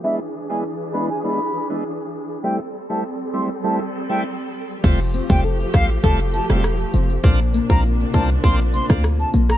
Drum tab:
CC |----------------|----------------|x---------------|----------------|
HH |----------------|----------------|--x---x---x---x-|--x---x---x---x-|
SH |----------------|----------------|xxxxxxxxxxxxxxxx|xxxxxxxxxxxxxxxx|
SD |----------------|----------------|------r----rr---|-----------rr--r|
BD |----------------|----------------|o--o--o-o-------|o--o--o-o--o----|